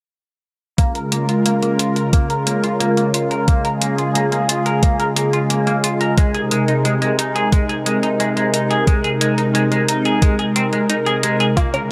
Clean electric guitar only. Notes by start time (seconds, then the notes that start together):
0.78 A#3
0.95 A#4
1.12 A#3
1.29 F4
1.46 A#3
1.62 A#3
1.79 F4
1.96 A#4
2.13 A#3
2.30 A#4
2.47 A#3
2.63 F4
2.80 A#3
2.97 A#3
3.14 F4
3.31 A#4
3.48 A#3
3.64 A#4
3.81 A#3
3.98 F4
4.15 A#3
4.32 A#3
4.49 F4
4.66 A#4
4.83 A#3
5.00 A#4
5.16 A#3
5.33 F4
5.50 A#3
5.67 A#3
5.84 F4
6.01 A#4
6.18 G#3
6.34 G#4
6.51 G#3
6.68 D#4
6.85 G#3
7.02 G#3
7.19 D#4
7.35 G#4
7.52 G#3
7.69 G#4
7.86 G#3
8.03 D#4
8.20 G#3
8.37 G#3
8.54 D#4
8.70 G#4
8.87 G#3
9.04 G#4
9.21 G#3
9.38 D#4
9.55 G#3
9.72 G#3
9.89 D#4
10.05 G#4
10.22 G#3
10.39 G#4
10.56 C4
10.73 G#3
10.90 D#4
11.06 G#4
11.23 G#3
11.40 G#4
11.57 A#3
11.74 A#4